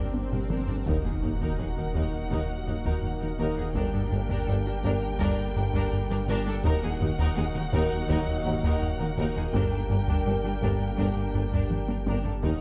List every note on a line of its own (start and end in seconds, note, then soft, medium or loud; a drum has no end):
0.00 0.86 G1 medium
0.00 0.83 A#3 medium
0.00 0.13 D4 soft
0.00 0.86 D4 medium
0.00 0.87 G4 medium
0.00 0.13 A#4 soft
0.00 0.83 A#4 medium
0.00 0.66 G5 medium
0.00 swell medium
0.14 0.25 G2 medium
0.14 taiko high medium
0.32 0.39 G2 soft
0.32 0.43 G3 medium
0.32 0.39 D4 soft
0.32 0.39 A#4 soft
0.32 taiko low-mid medium
0.50 0.57 G1 medium
0.50 0.61 G2 medium
0.50 0.58 G2 soft
0.50 0.67 D4 soft
0.50 0.67 A#4 medium
0.50 taiko mid medium
0.68 0.79 G2 medium
0.68 0.76 G2 soft
0.68 0.76 D4 soft
0.68 0.75 A4 soft
0.68 taiko low medium
0.86 3.77 D#1 medium
0.86 0.97 D#2 medium
0.86 0.94 D#2 medium
0.86 3.71 D#3 medium
0.86 3.71 F#3 medium
0.86 6.60 A#3 medium
0.86 6.47 A#3 medium
0.86 3.71 D#4 medium
0.86 1.03 D#4 medium
0.86 3.71 F#4 medium
0.86 6.60 A#4 medium
0.86 6.47 A#4 medium
0.86 1.03 A#4 medium
0.86 3.71 F#5 medium
0.86 taiko loud
0.86 impact medium
1.04 1.15 D#2 medium
1.04 1.12 D#2 soft
1.04 1.12 D#4 soft
1.04 1.12 G#4 soft
1.22 1.33 D#2 medium
1.22 1.30 D#2 soft
1.22 1.30 D#4 soft
1.22 1.30 A#4 medium
1.22 taiko low medium
1.40 1.51 D#2 medium
1.40 1.48 D#2 medium
1.40 1.58 D#4 medium
1.40 1.57 A#4 medium
1.40 taiko medium
1.58 1.66 D#2 soft
1.58 1.66 D#2 medium
1.58 1.69 D#2 medium
1.58 1.67 D#2 soft
1.58 1.67 D#4 soft
1.58 1.66 G#4 soft
1.77 1.84 D#2 medium
1.77 1.88 D#3 medium
1.77 1.85 D#4 soft
1.77 1.84 A#4 soft
1.95 2.02 D#2 medium
1.95 2.06 D#2 loud
1.95 2.02 D#2 medium
1.95 2.03 D#2 medium
1.95 2.12 D#4 medium
1.95 2.12 A#4 medium
1.95 taiko medium
2.13 2.24 D#2 medium
2.31 2.38 D#2 medium
2.31 2.42 D#2 loud
2.31 2.38 D#2 medium
2.31 2.39 D#2 medium
2.31 2.48 D#4 medium
2.31 2.48 A#4 medium
2.31 taiko medium
2.49 2.60 D#2 medium
2.67 2.74 D#2 medium
2.67 2.75 D#2 medium
2.67 2.75 D#2 soft
2.67 2.78 D#2 medium
2.67 2.75 D#4 medium
2.67 2.75 A#4 medium
2.67 taiko low medium
2.85 2.92 D#2 medium
2.85 2.96 D#2 medium
2.85 3.02 D#4 medium
2.85 3.02 A#4 medium
2.85 taiko medium
3.03 3.14 D#2 medium
3.03 taiko low medium
3.21 3.29 D#2 medium
3.21 3.33 D#3 medium
3.21 3.29 D#4 medium
3.21 3.29 A#4 medium
3.39 3.46 D#2 medium
3.39 3.47 D#2 medium
3.39 3.51 D#2 loud
3.39 3.56 D#4 medium
3.39 3.56 A#4 medium
3.57 3.65 D#2 medium
3.57 3.68 D#2 medium
3.57 3.64 D#4 medium
3.57 3.65 G#4 medium
3.75 3.83 G1 medium
3.75 6.66 G1 medium
3.75 3.83 G1 medium
3.75 3.83 G2 medium
3.75 3.87 G2 loud
3.75 6.61 D3 medium
3.75 6.61 G3 medium
3.75 6.64 D4 medium
3.75 3.92 D4 medium
3.75 6.64 G4 medium
3.75 3.93 A#4 medium
3.75 6.65 G5 medium
3.75 taiko loud
3.93 4.01 G2 medium
3.93 4.05 G2 medium
3.93 4.01 D4 soft
3.93 4.02 A4 soft
4.11 4.19 G1 medium
4.11 4.19 G2 medium
4.11 4.23 G2 medium
4.11 4.18 D4 medium
4.11 4.19 A#4 medium
4.11 taiko low medium
4.29 4.36 G2 medium
4.29 4.41 G2 loud
4.29 4.46 D4 medium
4.29 4.47 A#4 medium
4.29 taiko medium
4.47 4.55 G1 medium
4.47 4.56 G1 medium
4.47 4.55 G2 medium
4.47 4.59 G2 medium
4.47 4.55 D4 medium
4.47 4.55 A4 medium
4.66 4.73 G2 medium
4.66 4.77 G3 medium
4.66 4.73 D4 medium
4.66 4.73 A#4 medium
4.83 4.91 G1 medium
4.83 4.91 G2 medium
4.83 4.95 G2 loud
4.83 5.01 D4 medium
4.83 5.01 A#4 medium
4.83 taiko medium
5.02 5.13 G2 medium
5.19 5.27 G1 medium
5.19 5.27 G2 medium
5.19 5.31 G2 loud
5.19 5.37 D4 medium
5.19 5.37 A#4 loud
5.19 taiko medium
5.38 5.49 G2 medium
5.56 5.63 G1 medium
5.56 5.63 G2 medium
5.56 5.67 G2 medium
5.56 5.64 D4 medium
5.56 5.63 A#4 medium
5.56 taiko low medium
5.74 5.81 G2 medium
5.74 5.85 G2 medium
5.74 5.91 D4 medium
5.74 5.91 A#4 loud
5.74 taiko medium
5.92 6.03 G2 medium
5.92 taiko low medium
6.10 6.18 G2 medium
6.10 6.21 G3 medium
6.10 6.18 D4 medium
6.10 6.17 A#4 medium
6.28 6.35 G1 medium
6.28 6.36 G1 medium
6.28 6.35 G2 medium
6.28 6.39 G2 loud
6.28 6.45 D4 loud
6.28 6.45 A#4 medium
6.46 6.54 G2 medium
6.46 6.57 G2 medium
6.46 6.54 D4 medium
6.46 6.54 A4 medium
6.63 9.55 D#1 medium
6.63 6.72 D#2 medium
6.63 6.76 D#2 loud
6.63 9.36 D#3 medium
6.63 9.36 F#3 medium
6.63 12.39 A#3 medium
6.63 12.07 A#3 loud
6.63 9.53 D#4 medium
6.63 6.82 D#4 medium
6.63 9.53 F#4 medium
6.63 12.39 A#4 medium
6.63 12.07 A#4 loud
6.63 6.82 A#4 loud
6.63 9.50 F#5 loud
6.63 taiko loud
6.83 6.90 D#2 medium
6.83 6.94 D#2 medium
6.83 6.90 D#4 medium
6.83 6.90 G#4 medium
7.00 7.08 D#2 medium
7.00 7.12 D#2 medium
7.00 7.08 D#4 medium
7.00 7.08 A#4 medium
7.00 taiko low medium
7.18 7.29 D#2 loud
7.18 7.26 D#2 loud
7.18 7.36 D#4 loud
7.18 7.35 A#4 loud
7.18 taiko medium
7.36 7.44 D#2 medium
7.36 7.48 D#2 medium
7.36 7.44 D#2 medium
7.36 7.45 D#4 medium
7.36 7.44 G#4 medium
7.55 7.62 D#2 medium
7.55 7.66 D#3 medium
7.55 7.63 D#4 medium
7.55 7.62 A#4 medium
7.73 7.84 D#2 loud
7.73 7.80 D#2 loud
7.73 7.90 D#4 loud
7.73 7.90 A#4 loud
7.73 taiko loud
7.91 8.02 D#2 medium
8.09 8.16 D#2 loud
8.09 8.20 D#2 loud
8.09 8.16 D#2 loud
8.09 8.17 D#2 loud
8.09 8.27 D#4 medium
8.09 8.26 A#4 medium
8.09 taiko loud
8.27 8.38 D#2 medium
8.45 8.52 D#2 medium
8.45 8.56 D#2 medium
8.45 8.53 D#2 medium
8.45 8.53 D#4 medium
8.45 8.53 A#4 medium
8.45 taiko low medium
8.63 8.74 D#2 loud
8.63 8.71 D#2 loud
8.63 8.81 D#4 medium
8.63 8.81 A#4 loud
8.63 taiko medium
8.81 8.92 D#2 medium
8.81 taiko low medium
9.00 9.07 D#2 medium
9.00 9.10 D#3 medium
9.00 9.07 D#4 medium
9.00 9.07 A#4 medium
9.17 9.25 D#2 medium
9.17 9.28 D#2 loud
9.17 9.25 D#2 medium
9.17 9.35 D#4 medium
9.17 9.35 A#4 medium
9.36 9.46 D#2 medium
9.36 9.43 D#2 medium
9.36 9.43 D#4 medium
9.36 9.44 G#4 medium
9.53 12.44 G1 medium
9.53 9.61 G1 medium
9.53 9.64 G2 medium
9.53 9.61 G2 medium
9.53 12.07 D3 medium
9.53 12.07 G3 medium
9.53 12.43 D4 medium
9.53 9.71 D4 medium
9.53 12.43 G4 medium
9.53 9.71 A#4 medium
9.53 12.19 G5 medium
9.53 taiko loud
9.71 9.82 G2 medium
9.71 9.79 G2 medium
9.71 9.80 D4 medium
9.71 9.79 A4 medium
9.90 9.97 G1 soft
9.90 9.97 G1 medium
9.90 10.01 G2 medium
9.90 9.98 G2 medium
9.90 9.98 D4 medium
9.90 9.98 A#4 medium
9.90 taiko low medium
10.08 10.19 G2 loud
10.08 10.15 G2 medium
10.08 10.25 D4 medium
10.08 10.25 A#4 medium
10.08 taiko medium
10.26 10.33 G1 medium
10.26 10.37 G2 medium
10.26 10.34 G2 medium
10.26 10.33 D4 medium
10.26 10.34 A4 medium
10.44 10.52 G2 medium
10.44 10.55 G3 medium
10.44 10.52 D4 medium
10.44 10.52 A#4 medium
10.62 10.69 G1 medium
10.62 10.70 G1 medium
10.62 10.73 G2 medium
10.62 10.70 G2 medium
10.62 10.79 D4 medium
10.62 10.79 A#4 medium
10.62 taiko medium
10.80 10.91 G2 medium
10.98 11.05 G1 medium
10.98 11.06 G1 medium
10.98 11.09 G2 loud
10.98 11.06 G2 medium
10.98 11.15 D4 medium
10.98 11.15 A#4 medium
10.98 taiko medium
11.16 11.27 G2 medium
11.34 11.42 G1 soft
11.34 11.45 G2 medium
11.34 11.42 G2 soft
11.34 11.42 D4 soft
11.34 11.42 A#4 soft
11.34 taiko low medium
11.52 11.63 G2 loud
11.52 11.60 G2 medium
11.52 11.70 D4 medium
11.52 11.70 A#4 medium
11.52 taiko medium
11.70 11.81 G2 medium
11.70 taiko mid medium
11.88 11.96 G2 medium
11.88 11.99 G3 medium
11.88 11.96 D4 medium
11.88 11.97 A#4 medium
11.88 taiko high medium
12.06 12.14 G1 medium
12.06 12.17 G2 loud
12.06 12.14 G2 medium
12.06 12.24 D4 medium
12.06 12.24 A#4 medium
12.06 taiko high loud
12.24 12.35 G2 medium
12.24 12.33 G2 soft
12.24 12.32 D4 soft
12.24 12.33 A4 medium
12.24 taiko low medium
12.42 12.61 D#1 medium
12.42 12.53 D#2 loud
12.42 12.50 D#2 medium
12.42 12.51 D#2 medium
12.42 12.61 D#3 medium
12.42 12.61 A#3 medium
12.42 12.60 D#4 medium
12.42 12.61 D#4 medium
12.42 12.61 F#4 medium
12.42 12.61 A#4 medium
12.42 12.60 A#4 medium
12.42 12.61 F#5 medium
12.42 taiko loud